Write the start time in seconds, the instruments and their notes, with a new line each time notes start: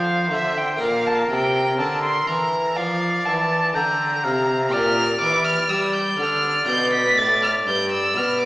Already playing: harpsichord F3 C4 F4 C5, cello F3, oboe C5, violin F5
0.31 cello D3, harpsichord D3, violin E5
0.58 violin G5
0.77 harpsichord A#3 F4 D5, oboe A#4
0.81 cello A#2, harpsichord A#2, violin F5
1.06 violin A5
1.30 harpsichord C3, cello C3, violin G5
1.79 cello D3, harpsichord D3, violin A5
2.03 violin C6
2.27 cello E3, harpsichord E3, violin A#5
2.76 cello F3, harpsichord F3, oboe D5, violin F5
3.26 cello E3, harpsichord E3, violin A5
3.75 cello D3, harpsichord D3, oboe G5, violin A#5
4.24 cello C3, harpsichord C3, oboe F5
4.70 cello A#2, harpsichord A#2 G4 D5, oboe D5, violin F6
5.21 cello E3, harpsichord E3, violin D6
5.44 violin F6
5.69 cello G3, harpsichord G3, violin E6
5.94 violin G6
6.19 cello D3, harpsichord D3, violin F6
6.65 harpsichord B2 F4 D5, cello B2, violin G6
6.93 violin B6
7.17 cello A2, harpsichord A2, violin A6
7.43 violin F6
7.67 cello G2, harpsichord G2, violin G6
7.91 violin E6
8.15 cello B2, harpsichord B2, violin F6
8.40 violin D6